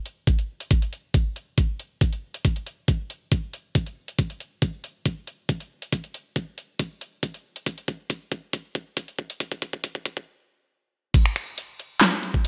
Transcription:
0.06 closed hi-hat
0.27 kick, closed hi-hat
0.39 closed hi-hat
0.60 closed hi-hat
0.71 kick, closed hi-hat
0.82 closed hi-hat
0.93 closed hi-hat
1.14 kick, closed hi-hat
1.36 closed hi-hat
1.58 kick, closed hi-hat
1.80 closed hi-hat
2.01 kick, closed hi-hat
2.13 closed hi-hat
2.34 closed hi-hat
2.45 kick, closed hi-hat
2.56 closed hi-hat
2.66 closed hi-hat
2.88 kick, closed hi-hat
3.10 closed hi-hat
3.32 kick, closed hi-hat
3.53 closed hi-hat
3.75 kick, closed hi-hat
3.86 closed hi-hat
4.08 closed hi-hat
4.19 kick, closed hi-hat
4.30 closed hi-hat
4.40 closed hi-hat
4.62 kick, closed hi-hat
4.84 closed hi-hat
5.06 kick, closed hi-hat
5.27 closed hi-hat
5.49 kick, closed hi-hat
5.60 closed hi-hat
5.82 closed hi-hat
5.93 kick, closed hi-hat
6.04 closed hi-hat
6.14 closed hi-hat
6.36 kick, closed hi-hat
6.58 closed hi-hat
6.79 kick, closed hi-hat
7.01 closed hi-hat
7.23 kick, closed hi-hat
7.34 closed hi-hat
7.56 closed hi-hat
7.66 kick, closed hi-hat
7.78 closed hi-hat
7.88 kick, closed hi-hat
8.10 kick, closed hi-hat
8.32 kick, closed hi-hat
8.53 kick, closed hi-hat
8.75 kick, closed hi-hat
8.97 kick, closed hi-hat
9.08 closed hi-hat
9.19 kick
9.30 closed hi-hat
9.40 kick, closed hi-hat
9.52 kick, closed hi-hat
9.62 kick, closed hi-hat
9.73 kick
9.84 kick, closed hi-hat
9.95 kick
10.06 kick, closed hi-hat
10.17 kick
11.14 kick, closed hi-hat, crash
11.26 finger snap, closed hi-hat
11.36 finger snap, closed hi-hat
11.58 closed hi-hat
11.79 closed hi-hat
12.01 snare, clap, closed hi-hat
12.23 closed hi-hat
12.34 kick
12.45 closed hi-hat

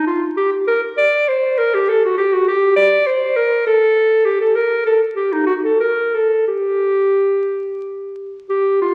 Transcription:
0.07 F4
0.37 G4
0.68 A#4
0.97 D5
1.28 C5
1.58 A#4
1.74 G4
1.89 A4
2.05 F#4
2.17 G4
2.33 F#4
2.48 G4
2.76 D5
3.07 C5
3.36 A#4
3.66 A4
4.25 G4
4.41 A4
4.55 A#4
4.86 A4
5.16 G4
5.32 D#4
5.46 F#4
5.64 A4
5.80 A#4
6.14 A4
6.48 G4
8.49 G4
8.82 F4

